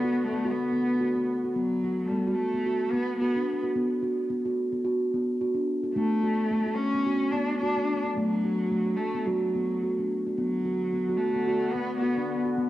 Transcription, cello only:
Already playing: B3
0.12 B3
0.23 A3
0.50 B3
1.55 F#3
2.05 G3 A3
2.34 A3
2.91 B3
3.19 B3
5.95 A3
6.75 C#4
7.31 D4
7.58 D4
8.13 F#3
8.96 A3
9.25 F#3
10.38 F#3
11.17 A3
11.72 B3
11.97 B3

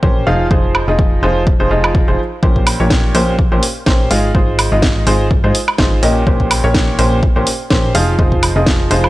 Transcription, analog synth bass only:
0.03 A#1
0.27 F1
0.51 F1
0.88 F1
1.23 F1
1.60 F1
1.71 F1
2.08 F1
2.43 A#1
2.80 A#1
3.15 A#1
3.52 A#1
3.87 A#1
4.11 G#1
4.35 G#1
4.72 G#1
5.07 G#1
5.44 G#2
5.79 G#1
6.03 A#1
6.27 A#1
6.64 A#1
6.99 A#1
7.36 A#1
7.71 A#1
7.95 F1
8.19 F1
8.56 F1
8.91 F1

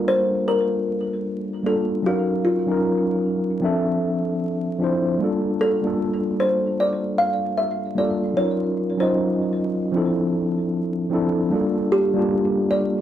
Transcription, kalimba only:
Already playing: F4
0.08 C5
0.48 A#4
1.66 A4
2.06 F#4
2.45 F4
5.61 A4
6.40 C5
6.80 D5
7.18 F5
7.58 E5
7.98 D5
8.37 C#5
9.00 C5
11.92 G4
12.71 D5

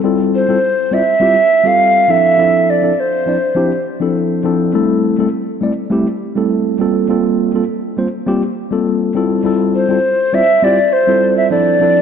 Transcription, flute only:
0.35 C5
0.94 E5
1.67 F5
2.11 E5
2.70 D5
3.00 C5
9.75 C5
10.34 E5
10.64 D5
10.93 C5
11.37 E5
11.51 D5

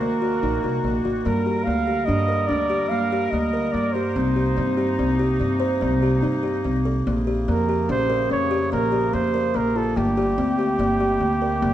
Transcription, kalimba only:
0.01 A#3
0.22 F#4
0.43 D#4
0.64 F#4
0.84 A#3
1.05 F#4
1.25 A#3
1.46 G4
1.67 A#3
1.87 G4
2.08 D4
2.28 A#4
2.49 D4
2.70 G4
2.91 A#3
3.12 G4
3.33 A#3
3.53 A#4
3.74 A#3
3.95 G4
4.16 C4
4.36 G4
4.57 C4
4.77 G4
4.99 C4
5.19 G4
5.40 C4
5.60 C5
5.81 C4
6.03 G4
6.22 D#4
6.43 G4
6.64 C4
6.85 A4
7.07 A#3
7.27 G4
7.48 A#3
7.69 G4
7.89 C#4
8.10 A#4
8.30 C#4
8.51 G4
8.72 A#3
8.92 G4
9.13 A#3
9.34 A#4
9.54 A#3
9.76 F4
9.96 A#3
10.17 G4
10.38 C4
10.59 G4
10.80 A#3
11.00 G4
11.21 A#3
11.42 A#4
11.62 A#3

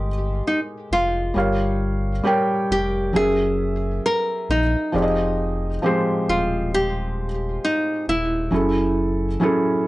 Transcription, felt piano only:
Already playing: G#3 D#4 G4 A#4 D#5
1.34 G3 G4 A#4 C#5 F5
2.23 G3 G4 A#4 C#5 G5
3.13 F#3 C#4 G#4 A#4 E5
4.92 F3 C4 G4 G#4 D5
5.02 D#5
5.82 F3 G#3 C4 G4 C5
8.51 F#3 C#4 E4 G#4 A4
9.40 F#3 C#4 E4 G#4 A4

